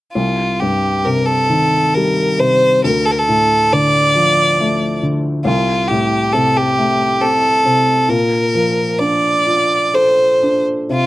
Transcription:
0.13 C2 F4
0.60 G2 G4
1.05 C3 A#4
1.26 A4
1.50 D#3
1.94 G3 A#4
2.39 C3 C5
2.84 D2 A#4
3.06 A4
3.11 A#4
3.19 A4
3.28 A2
3.73 D3 D5
4.15 F3
4.61 A3
5.03 D3
5.45 C2 F4
5.88 A2 G4
6.33 C3 A4
6.57 G4
6.78 A3
7.21 C4 A4
7.65 C3
8.09 A#2 A#4
8.55 F3
8.98 D4 D5
9.47 F4
9.94 A4 C5
10.43 D4
10.90 C3 F4

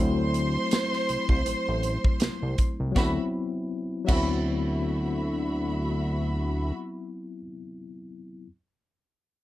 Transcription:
Already playing: D2 F#3 A3 C4 C5 C6
0.00 E4
0.34 closed hi-hat
0.71 snare, closed hi-hat, tambourine
0.93 snare
1.09 C2, closed hi-hat
1.29 C2, kick
1.46 A1, closed hi-hat
1.68 A1
1.83 closed hi-hat
2.04 kick
2.20 C2, snare, closed hi-hat, tambourine
2.43 C2
2.58 kick, closed hi-hat
2.80 C2
2.92 F#3 B3
2.96 D2 C4 E4 F#4 E5 B5, kick, snare, tambourine
4.05 F#3 B3 F#4 E5 B5, kick, crash
4.09 D2 C4, tambourine
4.13 E4

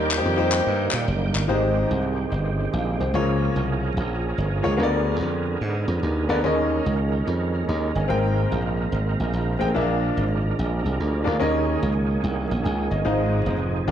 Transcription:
Already playing: D#2 D#3 G3 A#3 D#4 G4 G5
0.11 clap
0.17 D#4 G4 C5
0.25 F2
0.36 D#4 G4 C5
0.52 clap
0.67 G2
0.91 A#2, clap
1.08 F#1
1.35 G1, clap
1.48 G#1 G#2 D#3 G#3 C4 D#4 G4 C5
1.91 C2
2.32 G1
2.73 A#1 F5
3.00 C2 C5
3.14 C#2 C#3 F3 A#3 C#4 F4 G#4 A#4 C#5
3.56 C2
3.97 A#1
4.38 G1
4.62 C#2 A#3 F4 G#4 C#5
4.77 D2 D3 B3 G#4 A#4 C#5
4.83 D5
5.21 F2
5.61 G#2
5.88 F2
6.03 D#2
6.29 D2 B3 G#4 A#4 D5
6.44 D#2 D#3 G#3 C#4 G#4 A#4 D#5
6.86 C#2
7.27 F2
7.69 D#2 D#5
7.95 G1 G#5
8.08 G#1 G#2 A#3 C4 G#4 A#4 G5
8.52 A#1
8.92 G#1
9.20 A#1
9.33 A#1
9.59 A1 C4 G#4 A#4 G5
9.74 A#1 A#2 F3 D4 G#4 A#4 E5
9.81 F5
10.17 G#1
10.59 A#1
10.86 C2
11.00 D2
11.24 D2 D4 G#4 A#4 F5
11.39 D#2 D#3 A#3 C#4 G#4 A#4 D#5
11.83 C#2
12.24 C2
12.51 A#1
12.64 C#2 G#5
12.91 G1 D#5
13.05 G#1 G#2 F3 C4 D#4 G#4 C5 F5
13.46 F1
13.87 G1 G2 B3 D4 G4

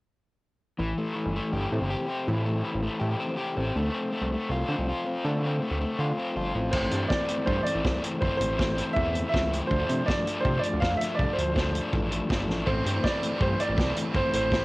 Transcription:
0.79 A1 E3
0.98 A3
1.15 E3
1.26 G1
1.36 A3
1.52 G1 G4
1.72 A2 C4
1.81 G1
1.90 G4
2.09 C4
2.28 A2 E3
2.46 A3
2.65 E3
2.75 A1
2.83 A3
3.00 A2 G4
3.20 C4
3.37 G4
3.57 A1 C4
3.75 D2 A3
3.94 C4
4.12 A3
4.21 C2
4.32 A3
4.49 C2 F4
4.68 D3 C4
4.79 C2
4.89 F4
5.06 C4
5.25 D3 A3
5.45 C4
5.62 A3
5.71 D2
5.81 A3
5.99 D3 F4
6.18 C4
6.36 G1 F4
6.55 A1 C4
6.71 A1 E3 A3 C4 C5, kick, crash
6.91 G2 A3 C4, closed hi-hat
7.08 E3 D5, kick, snare
7.13 A3 C4
7.28 E3 A3 C4, closed hi-hat
7.46 G2 E3 A3 C4 C5, kick
7.63 C4 D5, closed hi-hat
7.69 A3
7.75 A1
7.84 C2 E3 A3 C4, kick, snare
8.04 A3 C4, closed hi-hat
8.20 G1 E3 A3 C4 C5, kick
8.37 A1 C4 C5, closed hi-hat
8.43 A3
8.57 E3 A3 C4, kick, snare
8.76 E3 A3 C4, closed hi-hat
8.93 E2 E3 A3 E5, kick
8.97 C4
9.13 A3 C4, closed hi-hat
9.29 E3 A3 E5
9.34 C#2 C4, kick, snare
9.50 A3 C4, closed hi-hat
9.67 D2 F3 A3 D4 C5, kick
9.87 C3 A3 D4, closed hi-hat
10.04 F3 A3 D4 D5
10.08 kick, snare
10.25 F3 A3 D4, closed hi-hat
10.41 F3 C5
10.45 C3 A3 D4, kick
10.59 D4 D5, closed hi-hat
10.64 A3
10.73 D2
10.80 F2 F3 A3 D4 F5, kick, snare
10.97 D4 E5, closed hi-hat
11.02 A3, snare
11.15 F3 D5
11.19 C2 A3 D4, kick
11.33 D4 C5
11.38 D2 A3, closed hi-hat
11.54 F3 A3 D4, kick, snare
11.72 F3 A3 D4, closed hi-hat
11.91 A1 F3 A3 D4, kick
12.10 A3 D4, closed hi-hat
12.28 G1 F3 A3 D4, kick, snare
12.48 A1 A3 D4, snare
12.66 A1 A2 E3 A3 C4 E4 C5, kick
12.85 G2 A3 C4, closed hi-hat
13.04 E3 A3 C4 E4 D5, kick, snare
13.22 E3 A3 C4 E4, closed hi-hat
13.38 G2 E3 A3 C4, kick
13.42 C5
13.57 A3 C4 D5, closed hi-hat
13.69 A1
13.74 C2 A2 E3 A3 C4 E4, kick
13.80 snare
13.94 A3 C4 E4, closed hi-hat
14.13 G1 A2 E3 A3 C4 E4 C5, kick
14.31 A1 A3 C4, closed hi-hat
14.35 C5
14.50 E3 A3 C4 E4, kick, snare

